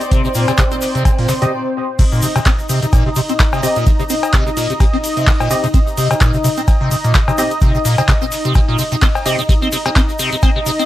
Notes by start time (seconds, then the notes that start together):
Already playing: C4 D#4 C5 D5
0.01 closed hi-hat, shaker
0.11 C3, kick, closed hi-hat, shaker
0.25 C3, shaker
0.34 A#2, closed hi-hat, open hi-hat, shaker
0.47 C3, closed hi-hat, cowbell, shaker
0.58 C3, kick, snare, clap, closed hi-hat, shaker
0.71 C4, closed hi-hat, shaker
0.81 snare, closed hi-hat, open hi-hat, shaker
0.95 C3, closed hi-hat, shaker
1.05 C3, kick, closed hi-hat, cowbell, shaker
1.18 A#2, closed hi-hat, open hi-hat
1.28 C3, snare, closed hi-hat, open hi-hat, shaker
1.42 C3 C4 G4 D#5, closed hi-hat, shaker
1.99 C3 D#4 D#5, kick, closed hi-hat, crash, ride, shaker
2.12 A#2, closed hi-hat, shaker
2.22 C3, closed hi-hat, open hi-hat, ride, shaker
2.35 C3, closed hi-hat, cowbell, shaker
2.45 C4, kick, snare, clap, closed hi-hat, ride, shaker
2.58 closed hi-hat, shaker
2.69 C3, closed hi-hat, open hi-hat, ride, shaker
2.82 C3, closed hi-hat, shaker
2.93 A#2, kick, closed hi-hat, ride, cowbell, shaker
3.06 C3
3.15 C3, closed hi-hat, open hi-hat, ride, shaker
3.28 C4, closed hi-hat, shaker
3.39 kick, snare, clap, closed hi-hat, ride, shaker
3.53 C3, cowbell, shaker
3.63 C3 C4 G4 D#5, closed hi-hat, open hi-hat, ride, shaker
3.76 A#2, closed hi-hat, shaker
3.86 C3, kick, closed hi-hat, ride, shaker
3.99 C3, shaker
4.10 C4, closed hi-hat, open hi-hat, ride, shaker
4.23 closed hi-hat, cowbell, shaker
4.33 C3, kick, snare, clap, closed hi-hat, ride, shaker
4.46 C3, closed hi-hat, shaker
4.57 A#2, snare, closed hi-hat, open hi-hat, ride, shaker
4.70 C3, closed hi-hat, shaker
4.80 C3, kick, closed hi-hat, ride, cowbell, shaker
4.93 C4, closed hi-hat
5.03 closed hi-hat, open hi-hat, ride, shaker
5.17 C3, closed hi-hat, shaker
5.26 C3, kick, snare, clap, open hi-hat, ride, shaker
5.40 A#2, cowbell, shaker
5.50 C3 C4 G4 D#5, closed hi-hat, open hi-hat, ride, shaker
5.64 C3, closed hi-hat, shaker
5.74 C4, kick, closed hi-hat, ride, shaker
5.87 closed hi-hat, shaker
5.97 C3, closed hi-hat, open hi-hat, ride, shaker
6.11 C3, closed hi-hat, cowbell, shaker
6.20 A#2, kick, snare, clap, closed hi-hat, ride, shaker
6.34 C3, closed hi-hat, shaker
6.44 C3, closed hi-hat, open hi-hat, ride, shaker
6.57 C4, closed hi-hat, shaker
6.68 kick, closed hi-hat, ride, cowbell, shaker
6.81 C3
6.91 C3, closed hi-hat, open hi-hat, ride, shaker
7.04 A#2, closed hi-hat, shaker
7.14 C3, kick, snare, clap, closed hi-hat, ride, shaker
7.28 C3, cowbell, shaker
7.38 C4 G4 D#5, closed hi-hat, open hi-hat, ride, shaker
7.51 closed hi-hat, shaker
7.61 C3, kick, closed hi-hat, ride, shaker
7.75 C3, closed hi-hat, shaker
7.85 A#2, closed hi-hat, open hi-hat, ride, shaker
7.98 C3, closed hi-hat, cowbell, shaker
8.08 C3, kick, snare, clap, closed hi-hat, ride, shaker
8.22 C4, closed hi-hat, shaker
8.32 snare, closed hi-hat, open hi-hat, ride, shaker
8.45 C3, closed hi-hat, shaker
8.54 C3, kick, closed hi-hat, ride, cowbell, shaker
8.68 A#2, closed hi-hat
8.78 C3, closed hi-hat, open hi-hat, ride, shaker
8.92 C3, closed hi-hat, shaker
9.02 C4, kick, snare, clap, closed hi-hat, open hi-hat, ride, shaker
9.15 cowbell, shaker
9.25 C3 C4 G4 D#5, closed hi-hat, open hi-hat, ride, shaker
9.39 C3, closed hi-hat, shaker
9.49 C3 D#4 D#5, kick, closed hi-hat, ride, shaker
9.62 C4, closed hi-hat, shaker
9.72 C3, closed hi-hat, open hi-hat, ride, shaker
9.85 C3, closed hi-hat, cowbell, shaker
9.95 C4, kick, snare, clap, closed hi-hat, ride, shaker
10.09 closed hi-hat, shaker
10.19 C3, closed hi-hat, open hi-hat, ride, shaker
10.32 C3, closed hi-hat, shaker
10.42 C4, kick, closed hi-hat, ride, cowbell, shaker
10.56 C3
10.66 C3, closed hi-hat, open hi-hat, ride, shaker
10.79 C4, closed hi-hat, shaker